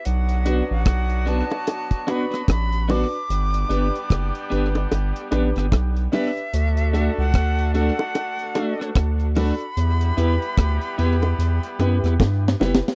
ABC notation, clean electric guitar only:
X:1
M:4/4
L:1/16
Q:"Swing 16ths" 1/4=74
K:Bm
V:1 name="Clean electric guitar"
z2 [B,DF] z3 [B,DF] z3 [B,DF] [B,DF] z2 [B,DF] z | z2 [B,DG] z3 [B,DG] z3 [B,DG] [B,DG] z2 [B,DG] z | z2 [A,DF] z3 [A,DF] z3 [A,DF] [A,DF] z2 [A,DF] z | z2 [B,EG] z3 [B,EG] z3 [B,EG] [B,EG] z2 [B,EG] z |]